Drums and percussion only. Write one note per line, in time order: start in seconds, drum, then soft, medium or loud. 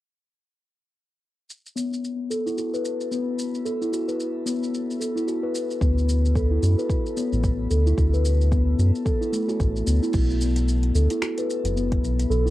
1.50 shaker soft
1.66 shaker soft
1.77 shaker medium
1.93 shaker soft
2.04 shaker soft
2.31 shaker medium
2.47 shaker soft
2.58 shaker soft
2.74 shaker soft
2.85 shaker medium
3.00 shaker soft
3.12 shaker soft
3.39 shaker medium
3.55 shaker soft
3.66 shaker soft
3.82 shaker soft
3.93 shaker medium
4.09 shaker soft
4.20 shaker soft
4.47 shaker medium
4.63 shaker soft
4.74 shaker soft
4.91 shaker soft
5.01 shaker medium
5.17 shaker soft
5.28 shaker soft
5.55 shaker medium
5.71 shaker soft
5.81 kick loud
5.81 shaker soft
5.98 shaker soft
6.09 shaker medium
6.25 shaker soft
6.35 kick loud
6.35 shaker soft
6.63 shaker medium
6.79 shaker soft
6.90 kick loud
6.90 shaker soft
7.06 shaker soft
7.17 shaker medium
7.33 shaker soft
7.44 kick loud
7.44 shaker soft
7.71 shaker medium
7.87 shaker soft
7.98 kick loud
7.98 shaker soft
8.14 shaker soft
8.25 shaker medium
8.41 shaker soft
8.52 kick loud
8.52 shaker soft
8.79 shaker medium
8.95 shaker soft
9.06 kick loud
9.06 shaker soft
9.22 shaker soft
9.33 shaker medium
9.49 shaker soft
9.60 kick loud
9.60 shaker soft
9.76 shaker soft
9.87 shaker medium
10.03 shaker soft
10.13 kick loud
10.13 crash medium
10.13 shaker soft
10.30 shaker soft
10.41 shaker medium
10.56 closed hi-hat medium
10.56 shaker soft
10.68 shaker soft
10.83 closed hi-hat soft
10.95 shaker medium
11.10 closed hi-hat medium
11.10 shaker soft
11.22 finger snap medium
11.22 shaker soft
11.38 closed hi-hat soft
11.38 shaker soft
11.50 shaker medium
11.65 closed hi-hat medium
11.65 shaker soft
11.77 shaker soft
11.92 kick loud
11.92 closed hi-hat soft
12.04 shaker medium
12.19 closed hi-hat medium
12.19 shaker soft
12.31 shaker soft
12.47 shaker soft